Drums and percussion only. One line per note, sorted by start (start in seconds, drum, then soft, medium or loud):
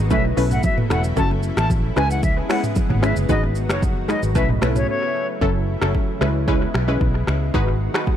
0.11 kick loud
0.11 low conga medium
0.11 shaker medium
0.37 open hi-hat medium
0.37 high conga medium
0.37 shaker medium
0.51 mid tom medium
0.51 shaker medium
0.63 kick medium
0.63 low conga medium
0.63 shaker medium
0.78 mid tom loud
0.78 high conga medium
0.90 finger snap medium
0.90 cross-stick medium
0.90 high conga medium
0.90 shaker medium
1.04 shaker medium
1.17 kick loud
1.17 low conga medium
1.17 shaker medium
1.31 high conga medium
1.43 shaker medium
1.57 finger snap medium
1.57 cross-stick loud
1.57 high conga medium
1.57 shaker medium
1.70 kick loud
1.70 low conga medium
1.70 shaker medium
1.97 finger snap medium
1.97 cross-stick medium
1.97 shaker medium
2.11 shaker medium
2.23 kick loud
2.23 low conga medium
2.23 shaker medium
2.50 finger snap medium
2.50 cross-stick loud
2.50 open hi-hat medium
2.50 high conga medium
2.50 shaker medium
2.64 mid tom medium
2.64 shaker medium
2.76 kick medium
2.76 low conga medium
2.76 shaker medium
2.90 mid tom loud
2.90 high conga medium
3.03 finger snap medium
3.03 cross-stick medium
3.03 high conga medium
3.03 shaker medium
3.16 shaker medium
3.29 kick loud
3.29 low conga medium
3.29 shaker medium
3.44 high conga medium
3.55 shaker medium
3.69 finger snap medium
3.69 cross-stick loud
3.69 high conga medium
3.69 shaker medium
3.82 kick loud
3.82 low conga medium
3.82 shaker medium
4.09 finger snap medium
4.09 cross-stick medium
4.09 shaker soft
4.23 shaker medium
4.35 kick loud
4.35 low conga medium
4.35 shaker medium
4.49 mid tom medium
4.62 finger snap medium
4.62 cross-stick loud
4.62 high conga medium
4.62 shaker medium
4.76 mid tom medium
4.76 shaker medium
5.42 kick loud
5.82 finger snap medium
5.82 cross-stick loud
5.95 kick medium
6.21 finger snap medium
6.21 cross-stick medium
6.48 kick loud
6.74 finger snap medium
6.74 cross-stick loud
7.01 kick medium
7.27 finger snap medium
7.27 cross-stick medium
7.54 kick loud
7.94 finger snap medium
7.94 cross-stick loud
8.07 kick medium